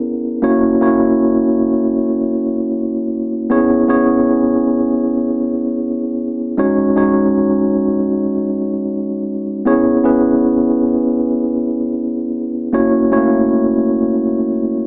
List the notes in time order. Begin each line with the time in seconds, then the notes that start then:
0.42 A#3 C#4 E4 F#4 C#5
0.81 A#3 C#4 E4 F#4 C#5
3.50 B3 C#4 E4 G#4 C#5
3.88 B3 C#4 E4 G#4 C#5
6.57 G#3 C#4 D#4 F#4 C#5
6.96 G#3 C#4 D#4 F#4 C#5
9.65 B3 C#4 E4 G#4 C#5
10.04 B3 C#4 E4 G#4 B4
12.73 A#3 C#4 E4 F#4 C#5
13.11 A3 C#4 E4 F#4 C#5
13.18 A#3